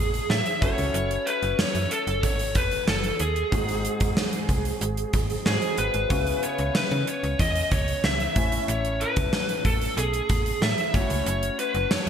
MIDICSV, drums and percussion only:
0, 0, Header, 1, 2, 480
1, 0, Start_track
1, 0, Tempo, 645161
1, 701, Time_signature, 4, 2, 24, 8
1, 8998, End_track
2, 0, Start_track
2, 0, Title_t, "Drums"
2, 103, Note_on_c, 9, 42, 41
2, 177, Note_off_c, 9, 42, 0
2, 223, Note_on_c, 9, 38, 100
2, 297, Note_off_c, 9, 38, 0
2, 340, Note_on_c, 9, 42, 45
2, 415, Note_off_c, 9, 42, 0
2, 461, Note_on_c, 9, 36, 94
2, 461, Note_on_c, 9, 42, 65
2, 535, Note_off_c, 9, 42, 0
2, 536, Note_off_c, 9, 36, 0
2, 580, Note_on_c, 9, 42, 51
2, 655, Note_off_c, 9, 42, 0
2, 702, Note_on_c, 9, 42, 80
2, 776, Note_off_c, 9, 42, 0
2, 824, Note_on_c, 9, 42, 54
2, 899, Note_off_c, 9, 42, 0
2, 944, Note_on_c, 9, 42, 67
2, 1018, Note_off_c, 9, 42, 0
2, 1060, Note_on_c, 9, 42, 47
2, 1134, Note_off_c, 9, 42, 0
2, 1181, Note_on_c, 9, 38, 104
2, 1256, Note_off_c, 9, 38, 0
2, 1300, Note_on_c, 9, 42, 51
2, 1375, Note_off_c, 9, 42, 0
2, 1421, Note_on_c, 9, 42, 65
2, 1496, Note_off_c, 9, 42, 0
2, 1542, Note_on_c, 9, 42, 52
2, 1616, Note_off_c, 9, 42, 0
2, 1661, Note_on_c, 9, 36, 77
2, 1661, Note_on_c, 9, 42, 75
2, 1735, Note_off_c, 9, 42, 0
2, 1736, Note_off_c, 9, 36, 0
2, 1780, Note_on_c, 9, 42, 52
2, 1854, Note_off_c, 9, 42, 0
2, 1896, Note_on_c, 9, 42, 76
2, 1900, Note_on_c, 9, 36, 90
2, 1970, Note_off_c, 9, 42, 0
2, 1975, Note_off_c, 9, 36, 0
2, 2019, Note_on_c, 9, 42, 39
2, 2093, Note_off_c, 9, 42, 0
2, 2140, Note_on_c, 9, 38, 102
2, 2214, Note_off_c, 9, 38, 0
2, 2258, Note_on_c, 9, 42, 44
2, 2333, Note_off_c, 9, 42, 0
2, 2377, Note_on_c, 9, 42, 67
2, 2451, Note_off_c, 9, 42, 0
2, 2499, Note_on_c, 9, 42, 48
2, 2574, Note_off_c, 9, 42, 0
2, 2620, Note_on_c, 9, 42, 80
2, 2621, Note_on_c, 9, 36, 93
2, 2695, Note_off_c, 9, 36, 0
2, 2695, Note_off_c, 9, 42, 0
2, 2742, Note_on_c, 9, 42, 54
2, 2816, Note_off_c, 9, 42, 0
2, 2862, Note_on_c, 9, 42, 66
2, 2936, Note_off_c, 9, 42, 0
2, 2977, Note_on_c, 9, 42, 49
2, 2982, Note_on_c, 9, 36, 83
2, 3052, Note_off_c, 9, 42, 0
2, 3056, Note_off_c, 9, 36, 0
2, 3101, Note_on_c, 9, 38, 105
2, 3175, Note_off_c, 9, 38, 0
2, 3220, Note_on_c, 9, 42, 48
2, 3294, Note_off_c, 9, 42, 0
2, 3339, Note_on_c, 9, 36, 79
2, 3341, Note_on_c, 9, 42, 61
2, 3414, Note_off_c, 9, 36, 0
2, 3416, Note_off_c, 9, 42, 0
2, 3460, Note_on_c, 9, 42, 48
2, 3535, Note_off_c, 9, 42, 0
2, 3580, Note_on_c, 9, 42, 78
2, 3654, Note_off_c, 9, 42, 0
2, 3700, Note_on_c, 9, 42, 52
2, 3775, Note_off_c, 9, 42, 0
2, 3818, Note_on_c, 9, 42, 73
2, 3821, Note_on_c, 9, 36, 85
2, 3893, Note_off_c, 9, 42, 0
2, 3896, Note_off_c, 9, 36, 0
2, 3942, Note_on_c, 9, 42, 41
2, 4016, Note_off_c, 9, 42, 0
2, 4061, Note_on_c, 9, 38, 103
2, 4136, Note_off_c, 9, 38, 0
2, 4180, Note_on_c, 9, 42, 46
2, 4254, Note_off_c, 9, 42, 0
2, 4297, Note_on_c, 9, 42, 64
2, 4371, Note_off_c, 9, 42, 0
2, 4418, Note_on_c, 9, 42, 48
2, 4492, Note_off_c, 9, 42, 0
2, 4539, Note_on_c, 9, 42, 77
2, 4541, Note_on_c, 9, 36, 94
2, 4614, Note_off_c, 9, 42, 0
2, 4615, Note_off_c, 9, 36, 0
2, 4661, Note_on_c, 9, 42, 54
2, 4736, Note_off_c, 9, 42, 0
2, 4782, Note_on_c, 9, 42, 63
2, 4857, Note_off_c, 9, 42, 0
2, 4899, Note_on_c, 9, 42, 49
2, 4973, Note_off_c, 9, 42, 0
2, 5021, Note_on_c, 9, 38, 109
2, 5095, Note_off_c, 9, 38, 0
2, 5141, Note_on_c, 9, 42, 48
2, 5216, Note_off_c, 9, 42, 0
2, 5263, Note_on_c, 9, 42, 66
2, 5337, Note_off_c, 9, 42, 0
2, 5383, Note_on_c, 9, 42, 49
2, 5457, Note_off_c, 9, 42, 0
2, 5501, Note_on_c, 9, 36, 83
2, 5501, Note_on_c, 9, 42, 72
2, 5576, Note_off_c, 9, 36, 0
2, 5576, Note_off_c, 9, 42, 0
2, 5620, Note_on_c, 9, 42, 51
2, 5695, Note_off_c, 9, 42, 0
2, 5739, Note_on_c, 9, 42, 76
2, 5741, Note_on_c, 9, 36, 86
2, 5813, Note_off_c, 9, 42, 0
2, 5815, Note_off_c, 9, 36, 0
2, 5861, Note_on_c, 9, 42, 40
2, 5936, Note_off_c, 9, 42, 0
2, 5980, Note_on_c, 9, 38, 102
2, 6055, Note_off_c, 9, 38, 0
2, 6100, Note_on_c, 9, 42, 47
2, 6175, Note_off_c, 9, 42, 0
2, 6218, Note_on_c, 9, 42, 66
2, 6220, Note_on_c, 9, 36, 92
2, 6292, Note_off_c, 9, 42, 0
2, 6295, Note_off_c, 9, 36, 0
2, 6339, Note_on_c, 9, 42, 53
2, 6413, Note_off_c, 9, 42, 0
2, 6459, Note_on_c, 9, 42, 78
2, 6534, Note_off_c, 9, 42, 0
2, 6582, Note_on_c, 9, 42, 51
2, 6656, Note_off_c, 9, 42, 0
2, 6702, Note_on_c, 9, 42, 67
2, 6777, Note_off_c, 9, 42, 0
2, 6817, Note_on_c, 9, 42, 49
2, 6821, Note_on_c, 9, 36, 87
2, 6892, Note_off_c, 9, 42, 0
2, 6896, Note_off_c, 9, 36, 0
2, 6940, Note_on_c, 9, 38, 107
2, 7014, Note_off_c, 9, 38, 0
2, 7059, Note_on_c, 9, 42, 51
2, 7134, Note_off_c, 9, 42, 0
2, 7179, Note_on_c, 9, 36, 82
2, 7179, Note_on_c, 9, 42, 61
2, 7253, Note_off_c, 9, 36, 0
2, 7254, Note_off_c, 9, 42, 0
2, 7302, Note_on_c, 9, 42, 48
2, 7377, Note_off_c, 9, 42, 0
2, 7421, Note_on_c, 9, 42, 81
2, 7495, Note_off_c, 9, 42, 0
2, 7540, Note_on_c, 9, 42, 53
2, 7615, Note_off_c, 9, 42, 0
2, 7658, Note_on_c, 9, 42, 74
2, 7661, Note_on_c, 9, 36, 90
2, 7732, Note_off_c, 9, 42, 0
2, 7735, Note_off_c, 9, 36, 0
2, 7782, Note_on_c, 9, 42, 40
2, 7856, Note_off_c, 9, 42, 0
2, 7902, Note_on_c, 9, 38, 102
2, 7976, Note_off_c, 9, 38, 0
2, 8019, Note_on_c, 9, 42, 48
2, 8094, Note_off_c, 9, 42, 0
2, 8139, Note_on_c, 9, 42, 70
2, 8140, Note_on_c, 9, 36, 94
2, 8213, Note_off_c, 9, 42, 0
2, 8215, Note_off_c, 9, 36, 0
2, 8259, Note_on_c, 9, 42, 50
2, 8333, Note_off_c, 9, 42, 0
2, 8380, Note_on_c, 9, 42, 81
2, 8455, Note_off_c, 9, 42, 0
2, 8502, Note_on_c, 9, 42, 55
2, 8576, Note_off_c, 9, 42, 0
2, 8622, Note_on_c, 9, 42, 65
2, 8697, Note_off_c, 9, 42, 0
2, 8738, Note_on_c, 9, 42, 48
2, 8812, Note_off_c, 9, 42, 0
2, 8860, Note_on_c, 9, 38, 107
2, 8934, Note_off_c, 9, 38, 0
2, 8998, End_track
0, 0, End_of_file